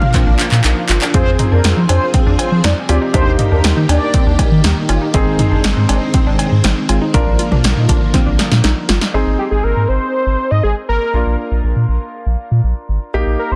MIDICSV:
0, 0, Header, 1, 8, 480
1, 0, Start_track
1, 0, Tempo, 500000
1, 1094, Time_signature, 4, 2, 24, 8
1, 13014, End_track
2, 0, Start_track
2, 0, Title_t, "Analog polysynth"
2, 0, Program_c, 0, 90
2, 1094, Note_on_c, 0, 72, 112
2, 1254, Note_off_c, 0, 72, 0
2, 1454, Note_on_c, 0, 70, 87
2, 1534, Note_off_c, 0, 70, 0
2, 1815, Note_on_c, 0, 72, 74
2, 1974, Note_off_c, 0, 72, 0
2, 2295, Note_on_c, 0, 72, 71
2, 2454, Note_off_c, 0, 72, 0
2, 2538, Note_on_c, 0, 74, 82
2, 2616, Note_off_c, 0, 74, 0
2, 2777, Note_on_c, 0, 74, 79
2, 2856, Note_off_c, 0, 74, 0
2, 3016, Note_on_c, 0, 72, 104
2, 3175, Note_off_c, 0, 72, 0
2, 3378, Note_on_c, 0, 70, 74
2, 3456, Note_off_c, 0, 70, 0
2, 3737, Note_on_c, 0, 74, 77
2, 4187, Note_off_c, 0, 74, 0
2, 13014, End_track
3, 0, Start_track
3, 0, Title_t, "Analog synth lead"
3, 0, Program_c, 1, 81
3, 0, Note_on_c, 1, 77, 121
3, 573, Note_off_c, 1, 77, 0
3, 9013, Note_on_c, 1, 67, 74
3, 9067, Note_off_c, 1, 67, 0
3, 9131, Note_on_c, 1, 68, 79
3, 9250, Note_on_c, 1, 70, 90
3, 9264, Note_off_c, 1, 68, 0
3, 9488, Note_on_c, 1, 72, 99
3, 9502, Note_off_c, 1, 70, 0
3, 10088, Note_on_c, 1, 75, 103
3, 10102, Note_off_c, 1, 72, 0
3, 10204, Note_off_c, 1, 75, 0
3, 10210, Note_on_c, 1, 68, 96
3, 10319, Note_off_c, 1, 68, 0
3, 10453, Note_on_c, 1, 70, 92
3, 10900, Note_off_c, 1, 70, 0
3, 12857, Note_on_c, 1, 70, 75
3, 12967, Note_off_c, 1, 70, 0
3, 12979, Note_on_c, 1, 72, 82
3, 13014, Note_off_c, 1, 72, 0
3, 13014, End_track
4, 0, Start_track
4, 0, Title_t, "Grand piano"
4, 0, Program_c, 2, 0
4, 0, Note_on_c, 2, 62, 71
4, 0, Note_on_c, 2, 65, 65
4, 0, Note_on_c, 2, 70, 81
4, 1057, Note_off_c, 2, 62, 0
4, 1057, Note_off_c, 2, 65, 0
4, 1057, Note_off_c, 2, 70, 0
4, 1095, Note_on_c, 2, 65, 75
4, 1095, Note_on_c, 2, 68, 87
4, 1096, Note_on_c, 2, 60, 81
4, 2741, Note_off_c, 2, 60, 0
4, 2741, Note_off_c, 2, 65, 0
4, 2741, Note_off_c, 2, 68, 0
4, 2774, Note_on_c, 2, 60, 60
4, 2774, Note_on_c, 2, 65, 55
4, 2774, Note_on_c, 2, 67, 68
4, 2999, Note_off_c, 2, 67, 0
4, 3013, Note_on_c, 2, 58, 80
4, 3013, Note_on_c, 2, 63, 74
4, 3014, Note_off_c, 2, 60, 0
4, 3014, Note_off_c, 2, 65, 0
4, 3014, Note_on_c, 2, 67, 90
4, 4895, Note_off_c, 2, 58, 0
4, 4895, Note_off_c, 2, 63, 0
4, 4896, Note_off_c, 2, 67, 0
4, 4938, Note_on_c, 2, 60, 81
4, 4938, Note_on_c, 2, 63, 76
4, 4938, Note_on_c, 2, 68, 92
4, 6818, Note_off_c, 2, 60, 0
4, 6818, Note_off_c, 2, 63, 0
4, 6818, Note_off_c, 2, 68, 0
4, 6856, Note_on_c, 2, 70, 89
4, 6857, Note_on_c, 2, 62, 81
4, 6857, Note_on_c, 2, 65, 74
4, 8737, Note_off_c, 2, 62, 0
4, 8737, Note_off_c, 2, 65, 0
4, 8737, Note_off_c, 2, 70, 0
4, 8775, Note_on_c, 2, 60, 76
4, 8776, Note_on_c, 2, 63, 67
4, 8777, Note_on_c, 2, 68, 81
4, 10656, Note_off_c, 2, 60, 0
4, 10657, Note_off_c, 2, 63, 0
4, 10657, Note_off_c, 2, 68, 0
4, 10695, Note_on_c, 2, 62, 57
4, 10696, Note_on_c, 2, 58, 63
4, 10697, Note_on_c, 2, 65, 69
4, 12576, Note_off_c, 2, 62, 0
4, 12577, Note_off_c, 2, 58, 0
4, 12577, Note_off_c, 2, 65, 0
4, 12615, Note_on_c, 2, 63, 68
4, 12615, Note_on_c, 2, 67, 84
4, 12616, Note_on_c, 2, 58, 75
4, 13014, Note_off_c, 2, 58, 0
4, 13014, Note_off_c, 2, 63, 0
4, 13014, Note_off_c, 2, 67, 0
4, 13014, End_track
5, 0, Start_track
5, 0, Title_t, "Synth pluck"
5, 0, Program_c, 3, 84
5, 137, Note_on_c, 3, 60, 91
5, 209, Note_off_c, 3, 60, 0
5, 257, Note_on_c, 3, 62, 77
5, 401, Note_off_c, 3, 62, 0
5, 617, Note_on_c, 3, 63, 93
5, 761, Note_off_c, 3, 63, 0
5, 857, Note_on_c, 3, 65, 81
5, 928, Note_off_c, 3, 65, 0
5, 978, Note_on_c, 3, 62, 76
5, 1049, Note_off_c, 3, 62, 0
5, 1097, Note_on_c, 3, 60, 101
5, 1241, Note_off_c, 3, 60, 0
5, 1337, Note_on_c, 3, 63, 82
5, 1408, Note_off_c, 3, 63, 0
5, 1457, Note_on_c, 3, 62, 80
5, 1601, Note_off_c, 3, 62, 0
5, 1697, Note_on_c, 3, 63, 80
5, 1769, Note_off_c, 3, 63, 0
5, 1817, Note_on_c, 3, 62, 81
5, 1961, Note_off_c, 3, 62, 0
5, 2056, Note_on_c, 3, 60, 90
5, 2128, Note_off_c, 3, 60, 0
5, 2176, Note_on_c, 3, 62, 79
5, 2320, Note_off_c, 3, 62, 0
5, 2534, Note_on_c, 3, 63, 89
5, 2679, Note_off_c, 3, 63, 0
5, 2775, Note_on_c, 3, 65, 81
5, 2847, Note_off_c, 3, 65, 0
5, 2895, Note_on_c, 3, 63, 76
5, 2967, Note_off_c, 3, 63, 0
5, 3015, Note_on_c, 3, 62, 100
5, 3159, Note_off_c, 3, 62, 0
5, 3256, Note_on_c, 3, 63, 80
5, 3328, Note_off_c, 3, 63, 0
5, 3377, Note_on_c, 3, 62, 78
5, 3521, Note_off_c, 3, 62, 0
5, 3617, Note_on_c, 3, 63, 80
5, 3689, Note_off_c, 3, 63, 0
5, 3737, Note_on_c, 3, 62, 78
5, 3880, Note_off_c, 3, 62, 0
5, 3976, Note_on_c, 3, 60, 92
5, 4048, Note_off_c, 3, 60, 0
5, 4097, Note_on_c, 3, 62, 75
5, 4240, Note_off_c, 3, 62, 0
5, 4457, Note_on_c, 3, 63, 86
5, 4601, Note_off_c, 3, 63, 0
5, 4696, Note_on_c, 3, 65, 82
5, 4768, Note_off_c, 3, 65, 0
5, 4815, Note_on_c, 3, 63, 76
5, 4887, Note_off_c, 3, 63, 0
5, 4935, Note_on_c, 3, 60, 95
5, 5079, Note_off_c, 3, 60, 0
5, 5176, Note_on_c, 3, 63, 79
5, 5248, Note_off_c, 3, 63, 0
5, 5294, Note_on_c, 3, 62, 76
5, 5439, Note_off_c, 3, 62, 0
5, 5537, Note_on_c, 3, 63, 80
5, 5608, Note_off_c, 3, 63, 0
5, 5656, Note_on_c, 3, 62, 82
5, 5800, Note_off_c, 3, 62, 0
5, 5896, Note_on_c, 3, 60, 93
5, 5968, Note_off_c, 3, 60, 0
5, 6017, Note_on_c, 3, 62, 77
5, 6161, Note_off_c, 3, 62, 0
5, 6376, Note_on_c, 3, 63, 87
5, 6520, Note_off_c, 3, 63, 0
5, 6616, Note_on_c, 3, 65, 80
5, 6688, Note_off_c, 3, 65, 0
5, 6736, Note_on_c, 3, 63, 75
5, 6808, Note_off_c, 3, 63, 0
5, 6854, Note_on_c, 3, 62, 96
5, 6999, Note_off_c, 3, 62, 0
5, 7096, Note_on_c, 3, 65, 77
5, 7168, Note_off_c, 3, 65, 0
5, 7215, Note_on_c, 3, 62, 76
5, 7359, Note_off_c, 3, 62, 0
5, 7454, Note_on_c, 3, 63, 82
5, 7527, Note_off_c, 3, 63, 0
5, 7574, Note_on_c, 3, 62, 82
5, 7719, Note_off_c, 3, 62, 0
5, 7815, Note_on_c, 3, 60, 94
5, 7887, Note_off_c, 3, 60, 0
5, 7933, Note_on_c, 3, 62, 78
5, 8078, Note_off_c, 3, 62, 0
5, 8293, Note_on_c, 3, 63, 87
5, 8438, Note_off_c, 3, 63, 0
5, 8534, Note_on_c, 3, 65, 81
5, 8606, Note_off_c, 3, 65, 0
5, 8655, Note_on_c, 3, 63, 74
5, 8727, Note_off_c, 3, 63, 0
5, 13014, End_track
6, 0, Start_track
6, 0, Title_t, "String machine"
6, 0, Program_c, 4, 50
6, 0, Note_on_c, 4, 53, 82
6, 0, Note_on_c, 4, 58, 73
6, 0, Note_on_c, 4, 62, 90
6, 1078, Note_off_c, 4, 58, 0
6, 1078, Note_off_c, 4, 62, 0
6, 1079, Note_off_c, 4, 53, 0
6, 1095, Note_on_c, 4, 68, 89
6, 1096, Note_on_c, 4, 53, 80
6, 1096, Note_on_c, 4, 60, 71
6, 2996, Note_off_c, 4, 53, 0
6, 2996, Note_off_c, 4, 60, 0
6, 2996, Note_off_c, 4, 68, 0
6, 3017, Note_on_c, 4, 51, 78
6, 3017, Note_on_c, 4, 58, 73
6, 3018, Note_on_c, 4, 67, 89
6, 4917, Note_off_c, 4, 58, 0
6, 4917, Note_off_c, 4, 67, 0
6, 4934, Note_on_c, 4, 60, 89
6, 4935, Note_on_c, 4, 56, 75
6, 6817, Note_off_c, 4, 51, 0
6, 6835, Note_off_c, 4, 56, 0
6, 6835, Note_off_c, 4, 60, 0
6, 6851, Note_on_c, 4, 50, 81
6, 6851, Note_on_c, 4, 53, 74
6, 6852, Note_on_c, 4, 58, 90
6, 8753, Note_off_c, 4, 53, 0
6, 8754, Note_off_c, 4, 50, 0
6, 8754, Note_off_c, 4, 58, 0
6, 13014, End_track
7, 0, Start_track
7, 0, Title_t, "Analog synth bass"
7, 0, Program_c, 5, 38
7, 256, Note_on_c, 5, 34, 97
7, 345, Note_off_c, 5, 34, 0
7, 497, Note_on_c, 5, 46, 110
7, 586, Note_off_c, 5, 46, 0
7, 618, Note_on_c, 5, 34, 99
7, 706, Note_off_c, 5, 34, 0
7, 857, Note_on_c, 5, 31, 91
7, 946, Note_off_c, 5, 31, 0
7, 1097, Note_on_c, 5, 41, 107
7, 1186, Note_off_c, 5, 41, 0
7, 1217, Note_on_c, 5, 41, 93
7, 1306, Note_off_c, 5, 41, 0
7, 1458, Note_on_c, 5, 41, 92
7, 1547, Note_off_c, 5, 41, 0
7, 1577, Note_on_c, 5, 41, 102
7, 1666, Note_off_c, 5, 41, 0
7, 1697, Note_on_c, 5, 53, 91
7, 1786, Note_off_c, 5, 53, 0
7, 1818, Note_on_c, 5, 41, 92
7, 1907, Note_off_c, 5, 41, 0
7, 2175, Note_on_c, 5, 41, 96
7, 2265, Note_off_c, 5, 41, 0
7, 2417, Note_on_c, 5, 53, 93
7, 2506, Note_off_c, 5, 53, 0
7, 2536, Note_on_c, 5, 41, 97
7, 2626, Note_off_c, 5, 41, 0
7, 2776, Note_on_c, 5, 38, 90
7, 2866, Note_off_c, 5, 38, 0
7, 3015, Note_on_c, 5, 39, 104
7, 3105, Note_off_c, 5, 39, 0
7, 3134, Note_on_c, 5, 39, 98
7, 3224, Note_off_c, 5, 39, 0
7, 3376, Note_on_c, 5, 39, 99
7, 3465, Note_off_c, 5, 39, 0
7, 3496, Note_on_c, 5, 39, 109
7, 3585, Note_off_c, 5, 39, 0
7, 3616, Note_on_c, 5, 51, 96
7, 3705, Note_off_c, 5, 51, 0
7, 3733, Note_on_c, 5, 39, 105
7, 3824, Note_off_c, 5, 39, 0
7, 4094, Note_on_c, 5, 39, 98
7, 4184, Note_off_c, 5, 39, 0
7, 4335, Note_on_c, 5, 51, 97
7, 4425, Note_off_c, 5, 51, 0
7, 4455, Note_on_c, 5, 39, 108
7, 4545, Note_off_c, 5, 39, 0
7, 4696, Note_on_c, 5, 31, 89
7, 4786, Note_off_c, 5, 31, 0
7, 4936, Note_on_c, 5, 32, 104
7, 5025, Note_off_c, 5, 32, 0
7, 5056, Note_on_c, 5, 32, 102
7, 5146, Note_off_c, 5, 32, 0
7, 5298, Note_on_c, 5, 32, 96
7, 5387, Note_off_c, 5, 32, 0
7, 5417, Note_on_c, 5, 32, 102
7, 5506, Note_off_c, 5, 32, 0
7, 5537, Note_on_c, 5, 44, 92
7, 5626, Note_off_c, 5, 44, 0
7, 5659, Note_on_c, 5, 32, 104
7, 5747, Note_off_c, 5, 32, 0
7, 6019, Note_on_c, 5, 32, 94
7, 6107, Note_off_c, 5, 32, 0
7, 6259, Note_on_c, 5, 44, 98
7, 6347, Note_off_c, 5, 44, 0
7, 6378, Note_on_c, 5, 32, 111
7, 6467, Note_off_c, 5, 32, 0
7, 6617, Note_on_c, 5, 32, 90
7, 6706, Note_off_c, 5, 32, 0
7, 6856, Note_on_c, 5, 34, 105
7, 6946, Note_off_c, 5, 34, 0
7, 6979, Note_on_c, 5, 34, 97
7, 7067, Note_off_c, 5, 34, 0
7, 7219, Note_on_c, 5, 34, 98
7, 7307, Note_off_c, 5, 34, 0
7, 7337, Note_on_c, 5, 34, 109
7, 7426, Note_off_c, 5, 34, 0
7, 7458, Note_on_c, 5, 46, 99
7, 7547, Note_off_c, 5, 46, 0
7, 7574, Note_on_c, 5, 34, 95
7, 7664, Note_off_c, 5, 34, 0
7, 7939, Note_on_c, 5, 34, 94
7, 8027, Note_off_c, 5, 34, 0
7, 8177, Note_on_c, 5, 46, 99
7, 8266, Note_off_c, 5, 46, 0
7, 8297, Note_on_c, 5, 34, 102
7, 8386, Note_off_c, 5, 34, 0
7, 8538, Note_on_c, 5, 31, 96
7, 8627, Note_off_c, 5, 31, 0
7, 8776, Note_on_c, 5, 32, 100
7, 8865, Note_off_c, 5, 32, 0
7, 8897, Note_on_c, 5, 32, 100
7, 8986, Note_off_c, 5, 32, 0
7, 9135, Note_on_c, 5, 32, 94
7, 9225, Note_off_c, 5, 32, 0
7, 9255, Note_on_c, 5, 32, 103
7, 9345, Note_off_c, 5, 32, 0
7, 9376, Note_on_c, 5, 44, 85
7, 9465, Note_off_c, 5, 44, 0
7, 9495, Note_on_c, 5, 32, 95
7, 9585, Note_off_c, 5, 32, 0
7, 9855, Note_on_c, 5, 32, 93
7, 9945, Note_off_c, 5, 32, 0
7, 10095, Note_on_c, 5, 44, 97
7, 10184, Note_off_c, 5, 44, 0
7, 10215, Note_on_c, 5, 32, 99
7, 10305, Note_off_c, 5, 32, 0
7, 10455, Note_on_c, 5, 32, 81
7, 10545, Note_off_c, 5, 32, 0
7, 10692, Note_on_c, 5, 34, 101
7, 10783, Note_off_c, 5, 34, 0
7, 10812, Note_on_c, 5, 34, 97
7, 10903, Note_off_c, 5, 34, 0
7, 11053, Note_on_c, 5, 34, 88
7, 11144, Note_off_c, 5, 34, 0
7, 11172, Note_on_c, 5, 34, 96
7, 11263, Note_off_c, 5, 34, 0
7, 11291, Note_on_c, 5, 46, 87
7, 11382, Note_off_c, 5, 46, 0
7, 11411, Note_on_c, 5, 34, 97
7, 11502, Note_off_c, 5, 34, 0
7, 11772, Note_on_c, 5, 34, 105
7, 11863, Note_off_c, 5, 34, 0
7, 12013, Note_on_c, 5, 46, 97
7, 12104, Note_off_c, 5, 46, 0
7, 12133, Note_on_c, 5, 34, 101
7, 12223, Note_off_c, 5, 34, 0
7, 12374, Note_on_c, 5, 32, 90
7, 12464, Note_off_c, 5, 32, 0
7, 12615, Note_on_c, 5, 34, 99
7, 12704, Note_off_c, 5, 34, 0
7, 12734, Note_on_c, 5, 34, 100
7, 12824, Note_off_c, 5, 34, 0
7, 12974, Note_on_c, 5, 34, 92
7, 13014, Note_off_c, 5, 34, 0
7, 13014, End_track
8, 0, Start_track
8, 0, Title_t, "Drums"
8, 16, Note_on_c, 9, 47, 99
8, 112, Note_off_c, 9, 47, 0
8, 135, Note_on_c, 9, 36, 99
8, 135, Note_on_c, 9, 42, 73
8, 137, Note_on_c, 9, 39, 62
8, 231, Note_off_c, 9, 36, 0
8, 231, Note_off_c, 9, 42, 0
8, 233, Note_off_c, 9, 39, 0
8, 377, Note_on_c, 9, 39, 78
8, 378, Note_on_c, 9, 42, 84
8, 473, Note_off_c, 9, 39, 0
8, 474, Note_off_c, 9, 42, 0
8, 498, Note_on_c, 9, 39, 69
8, 594, Note_off_c, 9, 39, 0
8, 617, Note_on_c, 9, 42, 74
8, 618, Note_on_c, 9, 39, 94
8, 713, Note_off_c, 9, 42, 0
8, 714, Note_off_c, 9, 39, 0
8, 855, Note_on_c, 9, 42, 76
8, 856, Note_on_c, 9, 39, 102
8, 951, Note_off_c, 9, 42, 0
8, 952, Note_off_c, 9, 39, 0
8, 976, Note_on_c, 9, 39, 96
8, 1072, Note_off_c, 9, 39, 0
8, 1096, Note_on_c, 9, 36, 122
8, 1096, Note_on_c, 9, 42, 80
8, 1192, Note_off_c, 9, 36, 0
8, 1192, Note_off_c, 9, 42, 0
8, 1335, Note_on_c, 9, 42, 70
8, 1335, Note_on_c, 9, 45, 87
8, 1431, Note_off_c, 9, 42, 0
8, 1431, Note_off_c, 9, 45, 0
8, 1576, Note_on_c, 9, 42, 78
8, 1579, Note_on_c, 9, 38, 113
8, 1672, Note_off_c, 9, 42, 0
8, 1675, Note_off_c, 9, 38, 0
8, 1816, Note_on_c, 9, 56, 68
8, 1817, Note_on_c, 9, 42, 92
8, 1912, Note_off_c, 9, 56, 0
8, 1913, Note_off_c, 9, 42, 0
8, 2053, Note_on_c, 9, 42, 72
8, 2054, Note_on_c, 9, 36, 97
8, 2149, Note_off_c, 9, 42, 0
8, 2150, Note_off_c, 9, 36, 0
8, 2293, Note_on_c, 9, 56, 66
8, 2295, Note_on_c, 9, 42, 82
8, 2389, Note_off_c, 9, 56, 0
8, 2391, Note_off_c, 9, 42, 0
8, 2534, Note_on_c, 9, 42, 73
8, 2537, Note_on_c, 9, 38, 105
8, 2630, Note_off_c, 9, 42, 0
8, 2633, Note_off_c, 9, 38, 0
8, 2774, Note_on_c, 9, 42, 72
8, 2775, Note_on_c, 9, 56, 61
8, 2870, Note_off_c, 9, 42, 0
8, 2871, Note_off_c, 9, 56, 0
8, 3015, Note_on_c, 9, 36, 118
8, 3015, Note_on_c, 9, 42, 80
8, 3111, Note_off_c, 9, 36, 0
8, 3111, Note_off_c, 9, 42, 0
8, 3253, Note_on_c, 9, 42, 70
8, 3253, Note_on_c, 9, 45, 90
8, 3349, Note_off_c, 9, 42, 0
8, 3349, Note_off_c, 9, 45, 0
8, 3494, Note_on_c, 9, 42, 76
8, 3498, Note_on_c, 9, 38, 112
8, 3590, Note_off_c, 9, 42, 0
8, 3594, Note_off_c, 9, 38, 0
8, 3736, Note_on_c, 9, 56, 71
8, 3737, Note_on_c, 9, 42, 94
8, 3832, Note_off_c, 9, 56, 0
8, 3833, Note_off_c, 9, 42, 0
8, 3972, Note_on_c, 9, 42, 73
8, 3974, Note_on_c, 9, 36, 100
8, 4068, Note_off_c, 9, 42, 0
8, 4070, Note_off_c, 9, 36, 0
8, 4213, Note_on_c, 9, 56, 63
8, 4214, Note_on_c, 9, 36, 96
8, 4215, Note_on_c, 9, 42, 83
8, 4309, Note_off_c, 9, 56, 0
8, 4310, Note_off_c, 9, 36, 0
8, 4311, Note_off_c, 9, 42, 0
8, 4454, Note_on_c, 9, 42, 76
8, 4457, Note_on_c, 9, 38, 106
8, 4550, Note_off_c, 9, 42, 0
8, 4553, Note_off_c, 9, 38, 0
8, 4694, Note_on_c, 9, 42, 73
8, 4695, Note_on_c, 9, 56, 59
8, 4790, Note_off_c, 9, 42, 0
8, 4791, Note_off_c, 9, 56, 0
8, 4933, Note_on_c, 9, 42, 76
8, 4935, Note_on_c, 9, 36, 118
8, 5029, Note_off_c, 9, 42, 0
8, 5031, Note_off_c, 9, 36, 0
8, 5174, Note_on_c, 9, 45, 90
8, 5175, Note_on_c, 9, 42, 72
8, 5270, Note_off_c, 9, 45, 0
8, 5271, Note_off_c, 9, 42, 0
8, 5414, Note_on_c, 9, 42, 77
8, 5418, Note_on_c, 9, 38, 118
8, 5510, Note_off_c, 9, 42, 0
8, 5514, Note_off_c, 9, 38, 0
8, 5654, Note_on_c, 9, 56, 71
8, 5656, Note_on_c, 9, 42, 94
8, 5750, Note_off_c, 9, 56, 0
8, 5752, Note_off_c, 9, 42, 0
8, 5893, Note_on_c, 9, 42, 72
8, 5894, Note_on_c, 9, 36, 99
8, 5989, Note_off_c, 9, 42, 0
8, 5990, Note_off_c, 9, 36, 0
8, 6134, Note_on_c, 9, 56, 66
8, 6136, Note_on_c, 9, 42, 78
8, 6230, Note_off_c, 9, 56, 0
8, 6232, Note_off_c, 9, 42, 0
8, 6373, Note_on_c, 9, 42, 71
8, 6377, Note_on_c, 9, 38, 104
8, 6469, Note_off_c, 9, 42, 0
8, 6473, Note_off_c, 9, 38, 0
8, 6615, Note_on_c, 9, 42, 76
8, 6616, Note_on_c, 9, 56, 60
8, 6711, Note_off_c, 9, 42, 0
8, 6712, Note_off_c, 9, 56, 0
8, 6856, Note_on_c, 9, 36, 114
8, 6856, Note_on_c, 9, 42, 78
8, 6952, Note_off_c, 9, 36, 0
8, 6952, Note_off_c, 9, 42, 0
8, 7095, Note_on_c, 9, 42, 69
8, 7191, Note_off_c, 9, 42, 0
8, 7217, Note_on_c, 9, 47, 91
8, 7313, Note_off_c, 9, 47, 0
8, 7336, Note_on_c, 9, 42, 76
8, 7339, Note_on_c, 9, 38, 112
8, 7432, Note_off_c, 9, 42, 0
8, 7435, Note_off_c, 9, 38, 0
8, 7574, Note_on_c, 9, 36, 92
8, 7577, Note_on_c, 9, 42, 89
8, 7670, Note_off_c, 9, 36, 0
8, 7673, Note_off_c, 9, 42, 0
8, 7813, Note_on_c, 9, 42, 73
8, 7814, Note_on_c, 9, 36, 97
8, 7815, Note_on_c, 9, 38, 58
8, 7909, Note_off_c, 9, 42, 0
8, 7910, Note_off_c, 9, 36, 0
8, 7911, Note_off_c, 9, 38, 0
8, 8055, Note_on_c, 9, 38, 73
8, 8056, Note_on_c, 9, 42, 82
8, 8151, Note_off_c, 9, 38, 0
8, 8152, Note_off_c, 9, 42, 0
8, 8175, Note_on_c, 9, 38, 67
8, 8271, Note_off_c, 9, 38, 0
8, 8293, Note_on_c, 9, 42, 73
8, 8294, Note_on_c, 9, 38, 86
8, 8389, Note_off_c, 9, 42, 0
8, 8390, Note_off_c, 9, 38, 0
8, 8533, Note_on_c, 9, 42, 75
8, 8534, Note_on_c, 9, 38, 105
8, 8629, Note_off_c, 9, 42, 0
8, 8630, Note_off_c, 9, 38, 0
8, 8654, Note_on_c, 9, 38, 92
8, 8750, Note_off_c, 9, 38, 0
8, 13014, End_track
0, 0, End_of_file